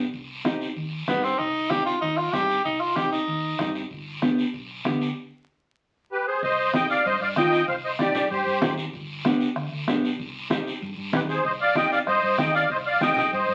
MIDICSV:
0, 0, Header, 1, 7, 480
1, 0, Start_track
1, 0, Key_signature, -3, "minor"
1, 0, Tempo, 314136
1, 205, Time_signature, 4, 2, 24, 8
1, 20695, End_track
2, 0, Start_track
2, 0, Title_t, "Accordion"
2, 0, Program_c, 0, 21
2, 9350, Note_on_c, 0, 67, 64
2, 9350, Note_on_c, 0, 71, 75
2, 9565, Note_off_c, 0, 67, 0
2, 9565, Note_off_c, 0, 71, 0
2, 9583, Note_on_c, 0, 68, 60
2, 9583, Note_on_c, 0, 72, 79
2, 9802, Note_off_c, 0, 68, 0
2, 9802, Note_off_c, 0, 72, 0
2, 9831, Note_on_c, 0, 75, 95
2, 9832, Note_on_c, 0, 72, 74
2, 10269, Note_off_c, 0, 75, 0
2, 10270, Note_off_c, 0, 72, 0
2, 10309, Note_on_c, 0, 79, 96
2, 10310, Note_on_c, 0, 75, 76
2, 10525, Note_off_c, 0, 75, 0
2, 10525, Note_off_c, 0, 79, 0
2, 10547, Note_on_c, 0, 77, 97
2, 10549, Note_on_c, 0, 74, 77
2, 10765, Note_off_c, 0, 74, 0
2, 10782, Note_on_c, 0, 75, 101
2, 10787, Note_off_c, 0, 77, 0
2, 10788, Note_on_c, 0, 72, 78
2, 11001, Note_off_c, 0, 75, 0
2, 11004, Note_off_c, 0, 72, 0
2, 11027, Note_on_c, 0, 77, 82
2, 11035, Note_on_c, 0, 74, 69
2, 11132, Note_off_c, 0, 77, 0
2, 11138, Note_off_c, 0, 74, 0
2, 11255, Note_on_c, 0, 79, 106
2, 11265, Note_on_c, 0, 75, 81
2, 11701, Note_off_c, 0, 79, 0
2, 11706, Note_off_c, 0, 75, 0
2, 11737, Note_on_c, 0, 77, 90
2, 11747, Note_on_c, 0, 72, 71
2, 11844, Note_off_c, 0, 77, 0
2, 11852, Note_off_c, 0, 72, 0
2, 11984, Note_on_c, 0, 75, 85
2, 11997, Note_on_c, 0, 72, 72
2, 12089, Note_off_c, 0, 75, 0
2, 12099, Note_off_c, 0, 72, 0
2, 12216, Note_on_c, 0, 74, 89
2, 12232, Note_on_c, 0, 67, 73
2, 12661, Note_off_c, 0, 74, 0
2, 12669, Note_off_c, 0, 67, 0
2, 12694, Note_on_c, 0, 72, 82
2, 12705, Note_on_c, 0, 67, 64
2, 13363, Note_off_c, 0, 72, 0
2, 13369, Note_off_c, 0, 67, 0
2, 17022, Note_on_c, 0, 71, 82
2, 17028, Note_on_c, 0, 67, 66
2, 17127, Note_off_c, 0, 71, 0
2, 17131, Note_off_c, 0, 67, 0
2, 17261, Note_on_c, 0, 72, 88
2, 17263, Note_on_c, 0, 68, 69
2, 17479, Note_off_c, 0, 72, 0
2, 17480, Note_off_c, 0, 68, 0
2, 17494, Note_on_c, 0, 75, 96
2, 17502, Note_on_c, 0, 72, 70
2, 17601, Note_off_c, 0, 75, 0
2, 17607, Note_off_c, 0, 72, 0
2, 17734, Note_on_c, 0, 77, 98
2, 17741, Note_on_c, 0, 74, 78
2, 17955, Note_off_c, 0, 77, 0
2, 17959, Note_off_c, 0, 74, 0
2, 17966, Note_on_c, 0, 79, 101
2, 17977, Note_on_c, 0, 75, 78
2, 18190, Note_off_c, 0, 79, 0
2, 18197, Note_off_c, 0, 75, 0
2, 18210, Note_on_c, 0, 77, 102
2, 18217, Note_on_c, 0, 74, 71
2, 18318, Note_off_c, 0, 77, 0
2, 18323, Note_off_c, 0, 74, 0
2, 18446, Note_on_c, 0, 75, 104
2, 18458, Note_on_c, 0, 72, 74
2, 18893, Note_off_c, 0, 75, 0
2, 18900, Note_off_c, 0, 72, 0
2, 18925, Note_on_c, 0, 79, 94
2, 18938, Note_on_c, 0, 75, 78
2, 19149, Note_off_c, 0, 79, 0
2, 19156, Note_off_c, 0, 75, 0
2, 19163, Note_on_c, 0, 77, 97
2, 19175, Note_on_c, 0, 74, 73
2, 19388, Note_off_c, 0, 77, 0
2, 19395, Note_off_c, 0, 74, 0
2, 19413, Note_on_c, 0, 75, 93
2, 19424, Note_on_c, 0, 72, 72
2, 19520, Note_off_c, 0, 75, 0
2, 19528, Note_off_c, 0, 72, 0
2, 19651, Note_on_c, 0, 77, 89
2, 19664, Note_on_c, 0, 74, 73
2, 19872, Note_off_c, 0, 77, 0
2, 19879, Note_off_c, 0, 74, 0
2, 19888, Note_on_c, 0, 79, 98
2, 19899, Note_on_c, 0, 75, 70
2, 20339, Note_off_c, 0, 75, 0
2, 20366, Note_on_c, 0, 75, 80
2, 20376, Note_on_c, 0, 72, 64
2, 20381, Note_off_c, 0, 79, 0
2, 20695, Note_off_c, 0, 72, 0
2, 20695, Note_off_c, 0, 75, 0
2, 20695, End_track
3, 0, Start_track
3, 0, Title_t, "Tenor saxophone"
3, 0, Program_c, 1, 66
3, 1654, Note_on_c, 1, 59, 87
3, 1887, Note_on_c, 1, 60, 85
3, 1910, Note_off_c, 1, 59, 0
3, 2118, Note_on_c, 1, 63, 86
3, 2141, Note_off_c, 1, 60, 0
3, 2596, Note_on_c, 1, 67, 89
3, 2619, Note_off_c, 1, 63, 0
3, 2826, Note_off_c, 1, 67, 0
3, 2835, Note_on_c, 1, 65, 82
3, 3063, Note_off_c, 1, 65, 0
3, 3078, Note_on_c, 1, 63, 94
3, 3317, Note_on_c, 1, 65, 86
3, 3340, Note_off_c, 1, 63, 0
3, 3557, Note_on_c, 1, 67, 92
3, 3580, Note_off_c, 1, 65, 0
3, 4036, Note_off_c, 1, 67, 0
3, 4045, Note_on_c, 1, 63, 82
3, 4276, Note_on_c, 1, 65, 85
3, 4299, Note_off_c, 1, 63, 0
3, 4516, Note_on_c, 1, 67, 84
3, 4539, Note_off_c, 1, 65, 0
3, 4754, Note_off_c, 1, 67, 0
3, 4763, Note_on_c, 1, 63, 72
3, 5665, Note_off_c, 1, 63, 0
3, 20695, End_track
4, 0, Start_track
4, 0, Title_t, "Nylon-string guitar"
4, 0, Program_c, 2, 24
4, 680, Note_on_c, 2, 60, 87
4, 690, Note_on_c, 2, 63, 75
4, 697, Note_on_c, 2, 67, 91
4, 1020, Note_off_c, 2, 60, 0
4, 1022, Note_off_c, 2, 63, 0
4, 1027, Note_off_c, 2, 67, 0
4, 1644, Note_on_c, 2, 60, 64
4, 1657, Note_on_c, 2, 63, 61
4, 1657, Note_on_c, 2, 67, 73
4, 1982, Note_off_c, 2, 60, 0
4, 1985, Note_off_c, 2, 63, 0
4, 1987, Note_off_c, 2, 67, 0
4, 2603, Note_on_c, 2, 60, 72
4, 2615, Note_on_c, 2, 63, 64
4, 2617, Note_on_c, 2, 67, 74
4, 2942, Note_off_c, 2, 60, 0
4, 2945, Note_off_c, 2, 63, 0
4, 2948, Note_off_c, 2, 67, 0
4, 3562, Note_on_c, 2, 60, 69
4, 3567, Note_on_c, 2, 63, 61
4, 3578, Note_on_c, 2, 67, 77
4, 3901, Note_off_c, 2, 60, 0
4, 3904, Note_off_c, 2, 63, 0
4, 3907, Note_off_c, 2, 67, 0
4, 4521, Note_on_c, 2, 60, 69
4, 4527, Note_on_c, 2, 63, 64
4, 4532, Note_on_c, 2, 67, 76
4, 4861, Note_off_c, 2, 60, 0
4, 4863, Note_off_c, 2, 63, 0
4, 4866, Note_off_c, 2, 67, 0
4, 5483, Note_on_c, 2, 60, 82
4, 5492, Note_on_c, 2, 63, 77
4, 5495, Note_on_c, 2, 67, 85
4, 5822, Note_off_c, 2, 60, 0
4, 5824, Note_off_c, 2, 63, 0
4, 5828, Note_off_c, 2, 67, 0
4, 6443, Note_on_c, 2, 59, 87
4, 6451, Note_on_c, 2, 62, 76
4, 6453, Note_on_c, 2, 67, 89
4, 6783, Note_off_c, 2, 59, 0
4, 6786, Note_off_c, 2, 62, 0
4, 6788, Note_off_c, 2, 67, 0
4, 7410, Note_on_c, 2, 59, 83
4, 7416, Note_on_c, 2, 62, 70
4, 7426, Note_on_c, 2, 67, 94
4, 7747, Note_off_c, 2, 59, 0
4, 7750, Note_off_c, 2, 62, 0
4, 7753, Note_off_c, 2, 67, 0
4, 10295, Note_on_c, 2, 60, 77
4, 10304, Note_on_c, 2, 63, 67
4, 10307, Note_on_c, 2, 67, 82
4, 10631, Note_off_c, 2, 60, 0
4, 10634, Note_off_c, 2, 63, 0
4, 10636, Note_off_c, 2, 67, 0
4, 11257, Note_on_c, 2, 60, 73
4, 11263, Note_on_c, 2, 63, 66
4, 11271, Note_on_c, 2, 65, 85
4, 11591, Note_off_c, 2, 60, 0
4, 11594, Note_off_c, 2, 63, 0
4, 11596, Note_off_c, 2, 65, 0
4, 12209, Note_on_c, 2, 60, 79
4, 12219, Note_on_c, 2, 63, 71
4, 12222, Note_on_c, 2, 67, 81
4, 12548, Note_off_c, 2, 60, 0
4, 12549, Note_off_c, 2, 63, 0
4, 12553, Note_off_c, 2, 67, 0
4, 13165, Note_on_c, 2, 60, 73
4, 13173, Note_on_c, 2, 63, 70
4, 13177, Note_on_c, 2, 67, 83
4, 13505, Note_off_c, 2, 60, 0
4, 13507, Note_off_c, 2, 63, 0
4, 13511, Note_off_c, 2, 67, 0
4, 14127, Note_on_c, 2, 59, 93
4, 14133, Note_on_c, 2, 62, 83
4, 14141, Note_on_c, 2, 67, 106
4, 14465, Note_off_c, 2, 59, 0
4, 14468, Note_off_c, 2, 62, 0
4, 14473, Note_off_c, 2, 67, 0
4, 15085, Note_on_c, 2, 59, 88
4, 15092, Note_on_c, 2, 62, 84
4, 15102, Note_on_c, 2, 67, 96
4, 15424, Note_off_c, 2, 59, 0
4, 15428, Note_off_c, 2, 62, 0
4, 15430, Note_off_c, 2, 67, 0
4, 16040, Note_on_c, 2, 60, 95
4, 16047, Note_on_c, 2, 63, 82
4, 16054, Note_on_c, 2, 67, 104
4, 16381, Note_off_c, 2, 60, 0
4, 16385, Note_off_c, 2, 63, 0
4, 16386, Note_off_c, 2, 67, 0
4, 16995, Note_on_c, 2, 60, 68
4, 17004, Note_on_c, 2, 63, 68
4, 17007, Note_on_c, 2, 67, 79
4, 17339, Note_off_c, 2, 60, 0
4, 17342, Note_off_c, 2, 63, 0
4, 17344, Note_off_c, 2, 67, 0
4, 17960, Note_on_c, 2, 60, 75
4, 17965, Note_on_c, 2, 63, 65
4, 17972, Note_on_c, 2, 67, 87
4, 18300, Note_off_c, 2, 60, 0
4, 18301, Note_off_c, 2, 63, 0
4, 18306, Note_off_c, 2, 67, 0
4, 18922, Note_on_c, 2, 60, 73
4, 18931, Note_on_c, 2, 63, 68
4, 18938, Note_on_c, 2, 67, 79
4, 19261, Note_off_c, 2, 60, 0
4, 19265, Note_off_c, 2, 63, 0
4, 19269, Note_off_c, 2, 67, 0
4, 19873, Note_on_c, 2, 60, 77
4, 19880, Note_on_c, 2, 63, 68
4, 19888, Note_on_c, 2, 67, 83
4, 20215, Note_off_c, 2, 60, 0
4, 20219, Note_off_c, 2, 63, 0
4, 20223, Note_off_c, 2, 67, 0
4, 20695, End_track
5, 0, Start_track
5, 0, Title_t, "Fingered electric bass"
5, 0, Program_c, 3, 33
5, 205, Note_on_c, 3, 36, 83
5, 973, Note_off_c, 3, 36, 0
5, 1166, Note_on_c, 3, 39, 80
5, 1550, Note_off_c, 3, 39, 0
5, 1647, Note_on_c, 3, 43, 81
5, 2030, Note_off_c, 3, 43, 0
5, 2129, Note_on_c, 3, 36, 87
5, 2896, Note_off_c, 3, 36, 0
5, 3087, Note_on_c, 3, 39, 78
5, 3471, Note_off_c, 3, 39, 0
5, 3571, Note_on_c, 3, 43, 81
5, 3953, Note_off_c, 3, 43, 0
5, 4050, Note_on_c, 3, 36, 83
5, 4817, Note_off_c, 3, 36, 0
5, 5004, Note_on_c, 3, 39, 82
5, 5390, Note_off_c, 3, 39, 0
5, 5486, Note_on_c, 3, 43, 76
5, 5871, Note_off_c, 3, 43, 0
5, 5968, Note_on_c, 3, 31, 93
5, 6737, Note_off_c, 3, 31, 0
5, 6933, Note_on_c, 3, 35, 78
5, 7316, Note_off_c, 3, 35, 0
5, 7411, Note_on_c, 3, 38, 88
5, 7795, Note_off_c, 3, 38, 0
5, 9816, Note_on_c, 3, 36, 112
5, 10583, Note_off_c, 3, 36, 0
5, 10779, Note_on_c, 3, 43, 92
5, 10968, Note_off_c, 3, 43, 0
5, 11015, Note_on_c, 3, 43, 91
5, 11206, Note_off_c, 3, 43, 0
5, 11252, Note_on_c, 3, 39, 92
5, 11637, Note_off_c, 3, 39, 0
5, 11734, Note_on_c, 3, 36, 107
5, 12501, Note_off_c, 3, 36, 0
5, 12689, Note_on_c, 3, 43, 99
5, 12883, Note_off_c, 3, 43, 0
5, 12933, Note_on_c, 3, 43, 94
5, 13125, Note_off_c, 3, 43, 0
5, 13168, Note_on_c, 3, 39, 93
5, 13554, Note_off_c, 3, 39, 0
5, 13651, Note_on_c, 3, 31, 105
5, 14419, Note_off_c, 3, 31, 0
5, 14604, Note_on_c, 3, 38, 99
5, 14799, Note_off_c, 3, 38, 0
5, 14850, Note_on_c, 3, 38, 87
5, 15043, Note_off_c, 3, 38, 0
5, 15572, Note_on_c, 3, 36, 109
5, 16339, Note_off_c, 3, 36, 0
5, 16532, Note_on_c, 3, 43, 101
5, 16723, Note_off_c, 3, 43, 0
5, 16769, Note_on_c, 3, 43, 86
5, 16962, Note_off_c, 3, 43, 0
5, 17008, Note_on_c, 3, 39, 99
5, 17392, Note_off_c, 3, 39, 0
5, 17490, Note_on_c, 3, 36, 110
5, 18257, Note_off_c, 3, 36, 0
5, 18450, Note_on_c, 3, 43, 88
5, 18641, Note_off_c, 3, 43, 0
5, 18688, Note_on_c, 3, 43, 84
5, 18880, Note_off_c, 3, 43, 0
5, 18922, Note_on_c, 3, 39, 94
5, 19308, Note_off_c, 3, 39, 0
5, 19403, Note_on_c, 3, 36, 105
5, 20172, Note_off_c, 3, 36, 0
5, 20369, Note_on_c, 3, 43, 91
5, 20559, Note_off_c, 3, 43, 0
5, 20608, Note_on_c, 3, 43, 95
5, 20695, Note_off_c, 3, 43, 0
5, 20695, End_track
6, 0, Start_track
6, 0, Title_t, "Two-headed folk drums"
6, 206, Note_on_c, 9, 36, 73
6, 358, Note_off_c, 9, 36, 0
6, 687, Note_on_c, 9, 37, 81
6, 840, Note_off_c, 9, 37, 0
6, 1166, Note_on_c, 9, 36, 83
6, 1319, Note_off_c, 9, 36, 0
6, 1649, Note_on_c, 9, 37, 78
6, 1802, Note_off_c, 9, 37, 0
6, 2126, Note_on_c, 9, 36, 72
6, 2279, Note_off_c, 9, 36, 0
6, 2603, Note_on_c, 9, 37, 81
6, 2756, Note_off_c, 9, 37, 0
6, 3086, Note_on_c, 9, 36, 89
6, 3239, Note_off_c, 9, 36, 0
6, 3327, Note_on_c, 9, 37, 71
6, 3480, Note_off_c, 9, 37, 0
6, 3568, Note_on_c, 9, 37, 79
6, 3721, Note_off_c, 9, 37, 0
6, 4047, Note_on_c, 9, 36, 75
6, 4200, Note_off_c, 9, 36, 0
6, 4522, Note_on_c, 9, 37, 79
6, 4674, Note_off_c, 9, 37, 0
6, 5004, Note_on_c, 9, 36, 80
6, 5157, Note_off_c, 9, 36, 0
6, 5484, Note_on_c, 9, 36, 68
6, 5484, Note_on_c, 9, 37, 85
6, 5637, Note_off_c, 9, 36, 0
6, 5637, Note_off_c, 9, 37, 0
6, 5965, Note_on_c, 9, 36, 82
6, 6118, Note_off_c, 9, 36, 0
6, 6451, Note_on_c, 9, 37, 76
6, 6604, Note_off_c, 9, 37, 0
6, 6930, Note_on_c, 9, 36, 85
6, 7083, Note_off_c, 9, 36, 0
6, 7413, Note_on_c, 9, 37, 80
6, 7566, Note_off_c, 9, 37, 0
6, 9816, Note_on_c, 9, 36, 83
6, 9969, Note_off_c, 9, 36, 0
6, 10292, Note_on_c, 9, 37, 84
6, 10445, Note_off_c, 9, 37, 0
6, 11249, Note_on_c, 9, 37, 88
6, 11252, Note_on_c, 9, 36, 86
6, 11402, Note_off_c, 9, 37, 0
6, 11404, Note_off_c, 9, 36, 0
6, 11733, Note_on_c, 9, 36, 83
6, 11886, Note_off_c, 9, 36, 0
6, 12208, Note_on_c, 9, 37, 86
6, 12361, Note_off_c, 9, 37, 0
6, 13166, Note_on_c, 9, 37, 85
6, 13169, Note_on_c, 9, 36, 89
6, 13319, Note_off_c, 9, 37, 0
6, 13322, Note_off_c, 9, 36, 0
6, 13651, Note_on_c, 9, 36, 80
6, 13803, Note_off_c, 9, 36, 0
6, 14132, Note_on_c, 9, 37, 89
6, 14285, Note_off_c, 9, 37, 0
6, 14608, Note_on_c, 9, 37, 81
6, 14760, Note_off_c, 9, 37, 0
6, 15090, Note_on_c, 9, 36, 83
6, 15093, Note_on_c, 9, 37, 89
6, 15243, Note_off_c, 9, 36, 0
6, 15245, Note_off_c, 9, 37, 0
6, 15572, Note_on_c, 9, 36, 89
6, 15725, Note_off_c, 9, 36, 0
6, 16058, Note_on_c, 9, 37, 82
6, 16211, Note_off_c, 9, 37, 0
6, 17009, Note_on_c, 9, 36, 84
6, 17013, Note_on_c, 9, 37, 86
6, 17162, Note_off_c, 9, 36, 0
6, 17166, Note_off_c, 9, 37, 0
6, 17487, Note_on_c, 9, 36, 83
6, 17640, Note_off_c, 9, 36, 0
6, 17968, Note_on_c, 9, 37, 89
6, 18120, Note_off_c, 9, 37, 0
6, 18443, Note_on_c, 9, 37, 82
6, 18595, Note_off_c, 9, 37, 0
6, 18922, Note_on_c, 9, 37, 90
6, 18923, Note_on_c, 9, 36, 85
6, 19075, Note_off_c, 9, 37, 0
6, 19076, Note_off_c, 9, 36, 0
6, 19405, Note_on_c, 9, 36, 89
6, 19557, Note_off_c, 9, 36, 0
6, 19886, Note_on_c, 9, 37, 86
6, 20039, Note_off_c, 9, 37, 0
6, 20695, End_track
7, 0, Start_track
7, 0, Title_t, "Drums"
7, 210, Note_on_c, 9, 74, 67
7, 363, Note_off_c, 9, 74, 0
7, 683, Note_on_c, 9, 63, 80
7, 689, Note_on_c, 9, 73, 70
7, 836, Note_off_c, 9, 63, 0
7, 842, Note_off_c, 9, 73, 0
7, 924, Note_on_c, 9, 73, 65
7, 1077, Note_off_c, 9, 73, 0
7, 1166, Note_on_c, 9, 74, 61
7, 1319, Note_off_c, 9, 74, 0
7, 1645, Note_on_c, 9, 63, 78
7, 1654, Note_on_c, 9, 73, 67
7, 1797, Note_off_c, 9, 63, 0
7, 1806, Note_off_c, 9, 73, 0
7, 1889, Note_on_c, 9, 73, 60
7, 2041, Note_off_c, 9, 73, 0
7, 2128, Note_on_c, 9, 74, 65
7, 2281, Note_off_c, 9, 74, 0
7, 2603, Note_on_c, 9, 63, 73
7, 2609, Note_on_c, 9, 73, 69
7, 2756, Note_off_c, 9, 63, 0
7, 2762, Note_off_c, 9, 73, 0
7, 2851, Note_on_c, 9, 73, 68
7, 3004, Note_off_c, 9, 73, 0
7, 3095, Note_on_c, 9, 74, 63
7, 3247, Note_off_c, 9, 74, 0
7, 3563, Note_on_c, 9, 63, 75
7, 3574, Note_on_c, 9, 73, 67
7, 3715, Note_off_c, 9, 63, 0
7, 3727, Note_off_c, 9, 73, 0
7, 3816, Note_on_c, 9, 73, 61
7, 3969, Note_off_c, 9, 73, 0
7, 4052, Note_on_c, 9, 74, 64
7, 4204, Note_off_c, 9, 74, 0
7, 4527, Note_on_c, 9, 63, 81
7, 4535, Note_on_c, 9, 73, 68
7, 4680, Note_off_c, 9, 63, 0
7, 4688, Note_off_c, 9, 73, 0
7, 4775, Note_on_c, 9, 73, 71
7, 4928, Note_off_c, 9, 73, 0
7, 5013, Note_on_c, 9, 74, 62
7, 5166, Note_off_c, 9, 74, 0
7, 5488, Note_on_c, 9, 63, 75
7, 5492, Note_on_c, 9, 73, 67
7, 5640, Note_off_c, 9, 63, 0
7, 5645, Note_off_c, 9, 73, 0
7, 5735, Note_on_c, 9, 73, 60
7, 5888, Note_off_c, 9, 73, 0
7, 5971, Note_on_c, 9, 74, 61
7, 6124, Note_off_c, 9, 74, 0
7, 6448, Note_on_c, 9, 63, 76
7, 6453, Note_on_c, 9, 73, 66
7, 6601, Note_off_c, 9, 63, 0
7, 6606, Note_off_c, 9, 73, 0
7, 6696, Note_on_c, 9, 73, 70
7, 6848, Note_off_c, 9, 73, 0
7, 6939, Note_on_c, 9, 74, 63
7, 7092, Note_off_c, 9, 74, 0
7, 7407, Note_on_c, 9, 63, 80
7, 7416, Note_on_c, 9, 73, 63
7, 7560, Note_off_c, 9, 63, 0
7, 7568, Note_off_c, 9, 73, 0
7, 7660, Note_on_c, 9, 73, 62
7, 7813, Note_off_c, 9, 73, 0
7, 9813, Note_on_c, 9, 63, 33
7, 9823, Note_on_c, 9, 74, 65
7, 9966, Note_off_c, 9, 63, 0
7, 9976, Note_off_c, 9, 74, 0
7, 10291, Note_on_c, 9, 63, 90
7, 10302, Note_on_c, 9, 73, 75
7, 10444, Note_off_c, 9, 63, 0
7, 10455, Note_off_c, 9, 73, 0
7, 10541, Note_on_c, 9, 73, 76
7, 10694, Note_off_c, 9, 73, 0
7, 10774, Note_on_c, 9, 63, 33
7, 10777, Note_on_c, 9, 74, 72
7, 10927, Note_off_c, 9, 63, 0
7, 10930, Note_off_c, 9, 74, 0
7, 11249, Note_on_c, 9, 63, 88
7, 11259, Note_on_c, 9, 73, 75
7, 11402, Note_off_c, 9, 63, 0
7, 11412, Note_off_c, 9, 73, 0
7, 11496, Note_on_c, 9, 73, 63
7, 11649, Note_off_c, 9, 73, 0
7, 11734, Note_on_c, 9, 74, 75
7, 11737, Note_on_c, 9, 63, 33
7, 11887, Note_off_c, 9, 74, 0
7, 11890, Note_off_c, 9, 63, 0
7, 12210, Note_on_c, 9, 63, 84
7, 12215, Note_on_c, 9, 73, 69
7, 12363, Note_off_c, 9, 63, 0
7, 12367, Note_off_c, 9, 73, 0
7, 12450, Note_on_c, 9, 73, 74
7, 12452, Note_on_c, 9, 64, 75
7, 12603, Note_off_c, 9, 73, 0
7, 12605, Note_off_c, 9, 64, 0
7, 12689, Note_on_c, 9, 74, 68
7, 12696, Note_on_c, 9, 63, 35
7, 12841, Note_off_c, 9, 74, 0
7, 12848, Note_off_c, 9, 63, 0
7, 13167, Note_on_c, 9, 63, 83
7, 13167, Note_on_c, 9, 64, 92
7, 13170, Note_on_c, 9, 73, 77
7, 13320, Note_off_c, 9, 63, 0
7, 13320, Note_off_c, 9, 64, 0
7, 13323, Note_off_c, 9, 73, 0
7, 13411, Note_on_c, 9, 73, 69
7, 13563, Note_off_c, 9, 73, 0
7, 13651, Note_on_c, 9, 63, 34
7, 13651, Note_on_c, 9, 74, 69
7, 13803, Note_off_c, 9, 63, 0
7, 13804, Note_off_c, 9, 74, 0
7, 14132, Note_on_c, 9, 63, 84
7, 14132, Note_on_c, 9, 73, 73
7, 14284, Note_off_c, 9, 63, 0
7, 14284, Note_off_c, 9, 73, 0
7, 14371, Note_on_c, 9, 73, 74
7, 14524, Note_off_c, 9, 73, 0
7, 14611, Note_on_c, 9, 74, 68
7, 14612, Note_on_c, 9, 63, 33
7, 14764, Note_off_c, 9, 63, 0
7, 14764, Note_off_c, 9, 74, 0
7, 15094, Note_on_c, 9, 63, 82
7, 15098, Note_on_c, 9, 73, 73
7, 15247, Note_off_c, 9, 63, 0
7, 15251, Note_off_c, 9, 73, 0
7, 15340, Note_on_c, 9, 73, 67
7, 15493, Note_off_c, 9, 73, 0
7, 15572, Note_on_c, 9, 63, 34
7, 15578, Note_on_c, 9, 74, 72
7, 15725, Note_off_c, 9, 63, 0
7, 15731, Note_off_c, 9, 74, 0
7, 16048, Note_on_c, 9, 63, 83
7, 16056, Note_on_c, 9, 73, 72
7, 16200, Note_off_c, 9, 63, 0
7, 16209, Note_off_c, 9, 73, 0
7, 16299, Note_on_c, 9, 73, 71
7, 16451, Note_off_c, 9, 73, 0
7, 16527, Note_on_c, 9, 63, 31
7, 16540, Note_on_c, 9, 74, 66
7, 16680, Note_off_c, 9, 63, 0
7, 16693, Note_off_c, 9, 74, 0
7, 17008, Note_on_c, 9, 63, 86
7, 17008, Note_on_c, 9, 64, 88
7, 17019, Note_on_c, 9, 73, 73
7, 17161, Note_off_c, 9, 63, 0
7, 17161, Note_off_c, 9, 64, 0
7, 17172, Note_off_c, 9, 73, 0
7, 17256, Note_on_c, 9, 73, 64
7, 17408, Note_off_c, 9, 73, 0
7, 17487, Note_on_c, 9, 63, 33
7, 17493, Note_on_c, 9, 74, 71
7, 17639, Note_off_c, 9, 63, 0
7, 17646, Note_off_c, 9, 74, 0
7, 17959, Note_on_c, 9, 63, 84
7, 17974, Note_on_c, 9, 73, 72
7, 18112, Note_off_c, 9, 63, 0
7, 18126, Note_off_c, 9, 73, 0
7, 18213, Note_on_c, 9, 73, 70
7, 18366, Note_off_c, 9, 73, 0
7, 18438, Note_on_c, 9, 63, 36
7, 18452, Note_on_c, 9, 74, 74
7, 18591, Note_off_c, 9, 63, 0
7, 18605, Note_off_c, 9, 74, 0
7, 18918, Note_on_c, 9, 63, 86
7, 18931, Note_on_c, 9, 73, 75
7, 19071, Note_off_c, 9, 63, 0
7, 19084, Note_off_c, 9, 73, 0
7, 19170, Note_on_c, 9, 73, 72
7, 19323, Note_off_c, 9, 73, 0
7, 19400, Note_on_c, 9, 63, 34
7, 19404, Note_on_c, 9, 74, 71
7, 19553, Note_off_c, 9, 63, 0
7, 19557, Note_off_c, 9, 74, 0
7, 19879, Note_on_c, 9, 63, 86
7, 19891, Note_on_c, 9, 73, 75
7, 20032, Note_off_c, 9, 63, 0
7, 20044, Note_off_c, 9, 73, 0
7, 20117, Note_on_c, 9, 64, 73
7, 20131, Note_on_c, 9, 73, 70
7, 20270, Note_off_c, 9, 64, 0
7, 20284, Note_off_c, 9, 73, 0
7, 20358, Note_on_c, 9, 63, 34
7, 20366, Note_on_c, 9, 74, 66
7, 20511, Note_off_c, 9, 63, 0
7, 20519, Note_off_c, 9, 74, 0
7, 20695, End_track
0, 0, End_of_file